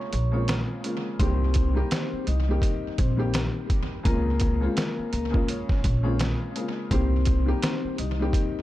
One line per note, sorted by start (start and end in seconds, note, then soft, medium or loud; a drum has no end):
0.00 0.30 C#5 medium
0.00 0.30 C#6 medium
0.13 0.61 A#1 loud
0.13 closed hi-hat medium
0.32 0.79 C#3 medium
0.32 0.80 G#3 medium
0.32 0.80 A#3 medium
0.32 0.80 C4 medium
0.32 0.81 F4 medium
0.32 0.47 C#5 medium
0.32 0.47 C#6 medium
0.48 snare loud
0.48 closed hi-hat medium
0.84 1.17 C#3 medium
0.84 1.18 G#3 medium
0.84 1.18 A#3 medium
0.84 1.18 C4 medium
0.84 1.19 F4 medium
0.84 closed hi-hat medium
1.19 1.80 C2 loud
1.19 1.71 D#3 medium
1.19 1.72 G3 medium
1.19 1.72 A#3 medium
1.19 1.73 C4 loud
1.19 1.72 C4 medium
1.19 1.73 G4 loud
1.19 1.73 C5 medium
1.19 kick loud
1.19 closed hi-hat loud
1.54 kick loud
1.54 closed hi-hat medium
1.74 2.22 D#3 medium
1.74 2.22 G3 medium
1.74 1.89 A#3 medium
1.74 2.23 A#3 medium
1.74 2.23 C4 medium
1.74 2.23 G4 loud
1.74 1.89 A#4 medium
1.91 2.24 C4 medium
1.91 2.24 C5 medium
1.91 snare loud
1.91 closed hi-hat medium
2.13 muted upright bass stroke soft
2.27 2.57 C2 medium
2.27 2.94 D#4 medium
2.27 2.95 D#5 medium
2.27 closed hi-hat medium
2.48 2.95 D#3 medium
2.48 2.95 G3 medium
2.48 2.95 A#3 medium
2.48 2.96 C4 medium
2.48 2.96 G4 loud
2.62 kick medium
2.62 closed hi-hat medium
2.98 3.46 A#1 loud
2.98 3.30 C4 medium
2.98 3.31 C5 medium
2.98 kick loud
2.98 closed hi-hat medium
3.17 3.98 D#3 medium
3.17 3.99 G3 medium
3.17 3.99 A#3 medium
3.17 3.99 C4 medium
3.17 4.00 G4 loud
3.34 snare loud
3.34 closed hi-hat medium
3.70 kick loud
3.70 closed hi-hat medium
4.03 4.65 C#2 loud
4.03 4.56 C#3 loud
4.03 4.56 G#3 medium
4.03 4.57 A#3 medium
4.03 4.59 A#3 loud
4.03 4.57 C4 medium
4.03 4.58 F4 loud
4.03 4.59 A#4 medium
4.03 kick loud
4.03 closed hi-hat medium
4.40 kick loud
4.40 closed hi-hat medium
4.61 5.08 C#3 medium
4.61 5.09 G#3 medium
4.61 4.75 G#3 medium
4.61 5.09 A#3 medium
4.61 5.09 C4 medium
4.61 5.10 F4 loud
4.61 4.75 G#4 medium
4.77 5.09 A#3 medium
4.77 5.10 A#4 medium
4.77 snare loud
4.77 closed hi-hat medium
4.99 muted upright bass stroke soft
5.12 5.43 C#2 medium
5.12 5.44 A#3 medium
5.12 5.45 A#4 medium
5.12 closed hi-hat medium
5.30 5.79 C#3 loud
5.30 5.79 G#3 medium
5.30 5.79 A#3 medium
5.30 5.80 C#4 medium
5.30 5.80 F4 loud
5.30 kick loud
5.48 6.02 C#4 medium
5.48 6.02 C#5 medium
5.48 closed hi-hat medium
5.69 kick loud
5.69 snare soft
5.84 6.32 A#1 loud
5.84 kick loud
5.84 closed hi-hat medium
6.03 6.51 C#3 loud
6.03 6.51 G#3 medium
6.03 6.51 A#3 medium
6.03 6.52 C4 medium
6.03 6.17 C#4 medium
6.03 6.52 F4 medium
6.03 6.18 C#5 medium
6.20 snare loud
6.20 closed hi-hat medium
6.56 6.89 C#3 medium
6.56 6.89 G#3 medium
6.56 6.89 A#3 medium
6.56 6.90 C4 medium
6.56 6.90 F4 medium
6.56 closed hi-hat medium
6.91 7.51 C2 loud
6.91 7.43 D#3 medium
6.91 7.43 G3 medium
6.91 7.44 A#3 medium
6.91 7.45 C4 loud
6.91 7.44 C4 medium
6.91 7.44 G4 loud
6.91 7.45 C5 medium
6.91 kick loud
6.91 closed hi-hat medium
7.25 kick loud
7.25 closed hi-hat medium
7.46 7.94 D#3 loud
7.46 7.94 G3 medium
7.46 7.94 A#3 medium
7.46 7.61 A#3 medium
7.46 7.95 C4 medium
7.46 7.95 G4 loud
7.46 7.62 A#4 medium
7.63 7.95 C4 medium
7.63 7.95 C5 medium
7.63 snare loud
7.63 closed hi-hat loud
7.84 muted upright bass stroke soft
7.98 8.29 C2 medium
7.98 8.62 D#4 medium
7.98 8.62 D#5 medium
7.98 closed hi-hat medium
8.19 8.62 D#3 medium
8.19 8.62 G3 medium
8.19 8.62 A#3 medium
8.19 8.62 C4 medium
8.19 8.62 G4 loud
8.33 kick medium
8.33 closed hi-hat medium